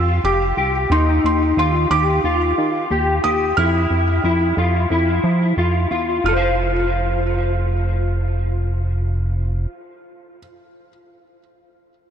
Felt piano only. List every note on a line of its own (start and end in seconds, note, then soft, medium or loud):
0.00 0.25 E6 medium
0.25 0.93 D6 medium
0.92 1.24 C6 medium
1.26 1.58 C6 medium
1.59 1.92 C6 medium
1.91 3.28 D6 loud
3.24 3.55 D#6 loud
3.57 5.86 F6 medium
6.26 10.37 F6 medium